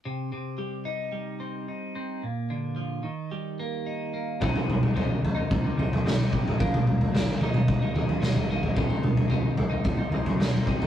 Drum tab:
SD |----------------|----------------|------------o---|----o-------o---|
T2 |----------------|----------------|--o---------o---|-oo----o----o---|
FT |----------------|----------------|oo-oo-o-o-oo---o|oo-oo-o-o-oo-o-o|
BD |----------------|----------------|o-------o-----o-|o-------o-------|

SD |------------o---|
T2 |--o---------o---|
FT |oo-oo-o-o-oo---o|
BD |o-------o-----o-|